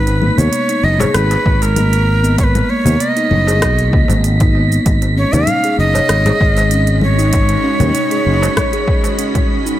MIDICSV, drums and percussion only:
0, 0, Header, 1, 3, 480
1, 0, Start_track
1, 0, Tempo, 618557
1, 1852, Time_signature, 4, 2, 24, 8
1, 7601, End_track
2, 0, Start_track
2, 0, Title_t, "Darbuka"
2, 51, Note_on_c, 9, 62, 52
2, 129, Note_off_c, 9, 62, 0
2, 293, Note_on_c, 9, 64, 91
2, 371, Note_off_c, 9, 64, 0
2, 536, Note_on_c, 9, 62, 32
2, 613, Note_off_c, 9, 62, 0
2, 777, Note_on_c, 9, 62, 61
2, 778, Note_on_c, 9, 63, 85
2, 780, Note_on_c, 9, 64, 86
2, 854, Note_off_c, 9, 62, 0
2, 856, Note_off_c, 9, 63, 0
2, 857, Note_off_c, 9, 64, 0
2, 1017, Note_on_c, 9, 63, 69
2, 1019, Note_on_c, 9, 62, 33
2, 1094, Note_off_c, 9, 63, 0
2, 1097, Note_off_c, 9, 62, 0
2, 1257, Note_on_c, 9, 63, 60
2, 1261, Note_on_c, 9, 62, 64
2, 1335, Note_off_c, 9, 63, 0
2, 1338, Note_off_c, 9, 62, 0
2, 1979, Note_on_c, 9, 62, 50
2, 2057, Note_off_c, 9, 62, 0
2, 2213, Note_on_c, 9, 64, 93
2, 2291, Note_off_c, 9, 64, 0
2, 2694, Note_on_c, 9, 63, 71
2, 2699, Note_on_c, 9, 62, 56
2, 2771, Note_off_c, 9, 63, 0
2, 2777, Note_off_c, 9, 62, 0
2, 3168, Note_on_c, 9, 63, 66
2, 3246, Note_off_c, 9, 63, 0
2, 3530, Note_on_c, 9, 63, 38
2, 3608, Note_off_c, 9, 63, 0
2, 3897, Note_on_c, 9, 62, 49
2, 3974, Note_off_c, 9, 62, 0
2, 4140, Note_on_c, 9, 64, 93
2, 4218, Note_off_c, 9, 64, 0
2, 4379, Note_on_c, 9, 62, 36
2, 4456, Note_off_c, 9, 62, 0
2, 4610, Note_on_c, 9, 62, 63
2, 4616, Note_on_c, 9, 63, 68
2, 4622, Note_on_c, 9, 64, 80
2, 4687, Note_off_c, 9, 62, 0
2, 4694, Note_off_c, 9, 63, 0
2, 4699, Note_off_c, 9, 64, 0
2, 4858, Note_on_c, 9, 63, 71
2, 4859, Note_on_c, 9, 62, 35
2, 4935, Note_off_c, 9, 63, 0
2, 4937, Note_off_c, 9, 62, 0
2, 5098, Note_on_c, 9, 62, 61
2, 5103, Note_on_c, 9, 63, 60
2, 5176, Note_off_c, 9, 62, 0
2, 5180, Note_off_c, 9, 63, 0
2, 5818, Note_on_c, 9, 62, 50
2, 5896, Note_off_c, 9, 62, 0
2, 6053, Note_on_c, 9, 64, 87
2, 6130, Note_off_c, 9, 64, 0
2, 6535, Note_on_c, 9, 62, 59
2, 6538, Note_on_c, 9, 63, 76
2, 6613, Note_off_c, 9, 62, 0
2, 6615, Note_off_c, 9, 63, 0
2, 7012, Note_on_c, 9, 63, 59
2, 7090, Note_off_c, 9, 63, 0
2, 7601, End_track
3, 0, Start_track
3, 0, Title_t, "Drums"
3, 55, Note_on_c, 9, 42, 43
3, 60, Note_on_c, 9, 82, 36
3, 132, Note_off_c, 9, 42, 0
3, 138, Note_off_c, 9, 82, 0
3, 168, Note_on_c, 9, 64, 74
3, 246, Note_off_c, 9, 64, 0
3, 297, Note_on_c, 9, 42, 32
3, 303, Note_on_c, 9, 82, 75
3, 375, Note_off_c, 9, 42, 0
3, 380, Note_off_c, 9, 82, 0
3, 408, Note_on_c, 9, 42, 61
3, 414, Note_on_c, 9, 82, 57
3, 486, Note_off_c, 9, 42, 0
3, 491, Note_off_c, 9, 82, 0
3, 536, Note_on_c, 9, 42, 47
3, 541, Note_on_c, 9, 82, 34
3, 613, Note_off_c, 9, 42, 0
3, 619, Note_off_c, 9, 82, 0
3, 774, Note_on_c, 9, 64, 76
3, 779, Note_on_c, 9, 82, 71
3, 851, Note_off_c, 9, 64, 0
3, 857, Note_off_c, 9, 82, 0
3, 888, Note_on_c, 9, 37, 76
3, 888, Note_on_c, 9, 42, 64
3, 893, Note_on_c, 9, 82, 62
3, 966, Note_off_c, 9, 37, 0
3, 966, Note_off_c, 9, 42, 0
3, 971, Note_off_c, 9, 82, 0
3, 1016, Note_on_c, 9, 42, 45
3, 1022, Note_on_c, 9, 82, 35
3, 1094, Note_off_c, 9, 42, 0
3, 1099, Note_off_c, 9, 82, 0
3, 1131, Note_on_c, 9, 36, 104
3, 1208, Note_off_c, 9, 36, 0
3, 1256, Note_on_c, 9, 42, 32
3, 1261, Note_on_c, 9, 82, 78
3, 1334, Note_off_c, 9, 42, 0
3, 1339, Note_off_c, 9, 82, 0
3, 1369, Note_on_c, 9, 42, 66
3, 1369, Note_on_c, 9, 64, 75
3, 1374, Note_on_c, 9, 82, 53
3, 1446, Note_off_c, 9, 42, 0
3, 1446, Note_off_c, 9, 64, 0
3, 1452, Note_off_c, 9, 82, 0
3, 1497, Note_on_c, 9, 42, 46
3, 1503, Note_on_c, 9, 82, 34
3, 1575, Note_off_c, 9, 42, 0
3, 1580, Note_off_c, 9, 82, 0
3, 1740, Note_on_c, 9, 82, 67
3, 1817, Note_off_c, 9, 82, 0
3, 1850, Note_on_c, 9, 36, 112
3, 1850, Note_on_c, 9, 42, 64
3, 1855, Note_on_c, 9, 82, 58
3, 1927, Note_off_c, 9, 36, 0
3, 1927, Note_off_c, 9, 42, 0
3, 1933, Note_off_c, 9, 82, 0
3, 1980, Note_on_c, 9, 42, 43
3, 1980, Note_on_c, 9, 64, 74
3, 1986, Note_on_c, 9, 82, 36
3, 2058, Note_off_c, 9, 42, 0
3, 2058, Note_off_c, 9, 64, 0
3, 2064, Note_off_c, 9, 82, 0
3, 2217, Note_on_c, 9, 42, 30
3, 2223, Note_on_c, 9, 82, 71
3, 2295, Note_off_c, 9, 42, 0
3, 2300, Note_off_c, 9, 82, 0
3, 2331, Note_on_c, 9, 42, 63
3, 2336, Note_on_c, 9, 82, 53
3, 2409, Note_off_c, 9, 42, 0
3, 2414, Note_off_c, 9, 82, 0
3, 2457, Note_on_c, 9, 42, 44
3, 2462, Note_on_c, 9, 82, 37
3, 2535, Note_off_c, 9, 42, 0
3, 2540, Note_off_c, 9, 82, 0
3, 2568, Note_on_c, 9, 64, 72
3, 2646, Note_off_c, 9, 64, 0
3, 2702, Note_on_c, 9, 82, 74
3, 2780, Note_off_c, 9, 82, 0
3, 2810, Note_on_c, 9, 36, 66
3, 2810, Note_on_c, 9, 37, 74
3, 2810, Note_on_c, 9, 42, 64
3, 2815, Note_on_c, 9, 82, 62
3, 2887, Note_off_c, 9, 37, 0
3, 2887, Note_off_c, 9, 42, 0
3, 2888, Note_off_c, 9, 36, 0
3, 2893, Note_off_c, 9, 82, 0
3, 2938, Note_on_c, 9, 42, 42
3, 2943, Note_on_c, 9, 82, 35
3, 3015, Note_off_c, 9, 42, 0
3, 3021, Note_off_c, 9, 82, 0
3, 3050, Note_on_c, 9, 36, 114
3, 3128, Note_off_c, 9, 36, 0
3, 3179, Note_on_c, 9, 42, 31
3, 3179, Note_on_c, 9, 64, 82
3, 3184, Note_on_c, 9, 82, 72
3, 3256, Note_off_c, 9, 42, 0
3, 3256, Note_off_c, 9, 64, 0
3, 3262, Note_off_c, 9, 82, 0
3, 3291, Note_on_c, 9, 42, 59
3, 3297, Note_on_c, 9, 82, 56
3, 3369, Note_off_c, 9, 42, 0
3, 3374, Note_off_c, 9, 82, 0
3, 3416, Note_on_c, 9, 42, 42
3, 3419, Note_on_c, 9, 36, 117
3, 3422, Note_on_c, 9, 82, 34
3, 3494, Note_off_c, 9, 42, 0
3, 3496, Note_off_c, 9, 36, 0
3, 3499, Note_off_c, 9, 82, 0
3, 3662, Note_on_c, 9, 82, 66
3, 3740, Note_off_c, 9, 82, 0
3, 3770, Note_on_c, 9, 42, 64
3, 3771, Note_on_c, 9, 36, 109
3, 3776, Note_on_c, 9, 82, 57
3, 3848, Note_off_c, 9, 42, 0
3, 3849, Note_off_c, 9, 36, 0
3, 3853, Note_off_c, 9, 82, 0
3, 3896, Note_on_c, 9, 42, 43
3, 3901, Note_on_c, 9, 82, 34
3, 3973, Note_off_c, 9, 42, 0
3, 3979, Note_off_c, 9, 82, 0
3, 4137, Note_on_c, 9, 42, 30
3, 4142, Note_on_c, 9, 82, 67
3, 4214, Note_off_c, 9, 42, 0
3, 4220, Note_off_c, 9, 82, 0
3, 4246, Note_on_c, 9, 42, 63
3, 4246, Note_on_c, 9, 64, 72
3, 4251, Note_on_c, 9, 82, 55
3, 4324, Note_off_c, 9, 42, 0
3, 4324, Note_off_c, 9, 64, 0
3, 4329, Note_off_c, 9, 82, 0
3, 4375, Note_on_c, 9, 42, 43
3, 4380, Note_on_c, 9, 82, 36
3, 4452, Note_off_c, 9, 42, 0
3, 4458, Note_off_c, 9, 82, 0
3, 4619, Note_on_c, 9, 82, 73
3, 4696, Note_off_c, 9, 82, 0
3, 4727, Note_on_c, 9, 37, 76
3, 4727, Note_on_c, 9, 42, 64
3, 4732, Note_on_c, 9, 82, 58
3, 4804, Note_off_c, 9, 37, 0
3, 4804, Note_off_c, 9, 42, 0
3, 4810, Note_off_c, 9, 82, 0
3, 4856, Note_on_c, 9, 42, 43
3, 4856, Note_on_c, 9, 64, 78
3, 4862, Note_on_c, 9, 82, 35
3, 4934, Note_off_c, 9, 42, 0
3, 4934, Note_off_c, 9, 64, 0
3, 4939, Note_off_c, 9, 82, 0
3, 4971, Note_on_c, 9, 36, 106
3, 5049, Note_off_c, 9, 36, 0
3, 5095, Note_on_c, 9, 42, 31
3, 5101, Note_on_c, 9, 82, 70
3, 5173, Note_off_c, 9, 42, 0
3, 5178, Note_off_c, 9, 82, 0
3, 5206, Note_on_c, 9, 42, 64
3, 5212, Note_on_c, 9, 82, 56
3, 5284, Note_off_c, 9, 42, 0
3, 5289, Note_off_c, 9, 82, 0
3, 5332, Note_on_c, 9, 42, 42
3, 5338, Note_on_c, 9, 82, 34
3, 5410, Note_off_c, 9, 42, 0
3, 5416, Note_off_c, 9, 82, 0
3, 5443, Note_on_c, 9, 64, 79
3, 5521, Note_off_c, 9, 64, 0
3, 5578, Note_on_c, 9, 82, 65
3, 5656, Note_off_c, 9, 82, 0
3, 5685, Note_on_c, 9, 42, 67
3, 5691, Note_on_c, 9, 36, 112
3, 5691, Note_on_c, 9, 82, 54
3, 5763, Note_off_c, 9, 42, 0
3, 5768, Note_off_c, 9, 82, 0
3, 5769, Note_off_c, 9, 36, 0
3, 5811, Note_on_c, 9, 42, 45
3, 5816, Note_on_c, 9, 82, 34
3, 5888, Note_off_c, 9, 42, 0
3, 5894, Note_off_c, 9, 82, 0
3, 6053, Note_on_c, 9, 42, 31
3, 6053, Note_on_c, 9, 64, 83
3, 6059, Note_on_c, 9, 82, 68
3, 6131, Note_off_c, 9, 42, 0
3, 6131, Note_off_c, 9, 64, 0
3, 6136, Note_off_c, 9, 82, 0
3, 6166, Note_on_c, 9, 42, 63
3, 6172, Note_on_c, 9, 82, 54
3, 6244, Note_off_c, 9, 42, 0
3, 6250, Note_off_c, 9, 82, 0
3, 6295, Note_on_c, 9, 42, 45
3, 6301, Note_on_c, 9, 82, 33
3, 6373, Note_off_c, 9, 42, 0
3, 6378, Note_off_c, 9, 82, 0
3, 6542, Note_on_c, 9, 82, 63
3, 6620, Note_off_c, 9, 82, 0
3, 6649, Note_on_c, 9, 36, 59
3, 6650, Note_on_c, 9, 37, 79
3, 6650, Note_on_c, 9, 42, 65
3, 6650, Note_on_c, 9, 64, 84
3, 6655, Note_on_c, 9, 82, 54
3, 6727, Note_off_c, 9, 36, 0
3, 6728, Note_off_c, 9, 37, 0
3, 6728, Note_off_c, 9, 42, 0
3, 6728, Note_off_c, 9, 64, 0
3, 6733, Note_off_c, 9, 82, 0
3, 6775, Note_on_c, 9, 42, 46
3, 6781, Note_on_c, 9, 82, 35
3, 6853, Note_off_c, 9, 42, 0
3, 6858, Note_off_c, 9, 82, 0
3, 6888, Note_on_c, 9, 36, 109
3, 6966, Note_off_c, 9, 36, 0
3, 7016, Note_on_c, 9, 42, 31
3, 7021, Note_on_c, 9, 82, 70
3, 7093, Note_off_c, 9, 42, 0
3, 7099, Note_off_c, 9, 82, 0
3, 7128, Note_on_c, 9, 42, 68
3, 7134, Note_on_c, 9, 82, 54
3, 7206, Note_off_c, 9, 42, 0
3, 7211, Note_off_c, 9, 82, 0
3, 7256, Note_on_c, 9, 36, 101
3, 7257, Note_on_c, 9, 42, 45
3, 7257, Note_on_c, 9, 64, 77
3, 7262, Note_on_c, 9, 82, 33
3, 7333, Note_off_c, 9, 36, 0
3, 7335, Note_off_c, 9, 42, 0
3, 7335, Note_off_c, 9, 64, 0
3, 7340, Note_off_c, 9, 82, 0
3, 7500, Note_on_c, 9, 82, 67
3, 7577, Note_off_c, 9, 82, 0
3, 7601, End_track
0, 0, End_of_file